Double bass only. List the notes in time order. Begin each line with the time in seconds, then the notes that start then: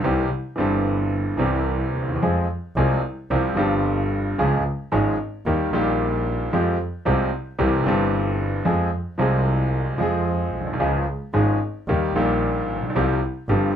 0.04 C2
0.59 G1
1.39 C2
1.95 D#2
2.21 F2
2.76 C2
3.31 C2
3.57 G1
4.39 C#2
4.93 G#1
5.46 D#2
5.74 A#1
6.54 F2
7.07 C2
7.60 C2
7.86 G1
8.65 F2
9.19 C2
10.00 F2
10.54 B1
10.80 C#2
11.34 G#1
11.87 D#2
12.15 A#1
12.69 A#1
12.95 C2
13.48 G1